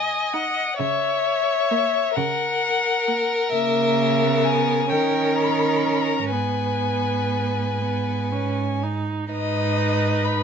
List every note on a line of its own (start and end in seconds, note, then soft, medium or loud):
0.00 0.55 F#2 soft
0.00 0.75 D#5 soft
0.00 0.34 G#5 soft
0.33 0.68 D#4 soft
0.33 0.79 F#5 medium
0.78 1.92 C#3 medium
0.78 2.13 C#5 medium
0.78 2.18 E5 medium
1.71 2.05 A#3 soft
2.16 3.29 C#3 medium
2.16 4.87 A#4 medium
2.16 3.51 F#5 medium
3.08 3.42 A#3 soft
3.52 4.93 C#3 medium
3.52 4.25 A#3 soft
3.52 4.45 E5 medium
4.23 4.91 B3 soft
4.44 4.92 G#5 medium
4.90 6.32 D#3 soft
4.90 6.34 C#4 soft
4.90 6.30 A#4 soft
4.90 5.37 G5 soft
5.36 5.45 A#5 soft
5.44 5.53 B5 soft
5.51 5.61 A#5 soft
5.59 5.70 B5 soft
5.68 5.78 A#5 soft
5.76 5.87 B5 soft
5.86 5.96 A#5 soft
5.94 6.03 B5 soft
6.02 6.31 A#5 medium
6.32 9.08 G#2 soft
6.32 7.72 B3 soft
6.32 8.53 B4 soft
6.32 8.79 G#5 soft
7.81 8.33 B3 soft
8.32 8.85 C#4 soft
8.83 9.32 D#4 soft
9.32 10.43 G#2 soft
9.32 10.43 D#4 soft
9.32 10.43 B4 soft
9.32 10.27 D#5 medium
10.25 10.43 B5 medium